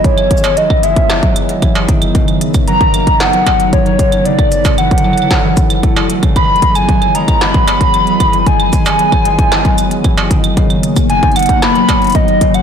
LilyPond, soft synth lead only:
\new Staff \with { instrumentName = "Soft synth lead" } { \time 4/4 \key e \lydian \tempo 4 = 114 cis''4 dis''8 e''4 r4. | r4 ais''4 fis''4 cis''4 | d''4 fis''2~ fis''8 r8 | b''8. gis''8. ais''8 b''2 |
gis''2.~ gis''8 r8 | r4 gis''8 fis''8 b''4 dis''8. fis''16 | }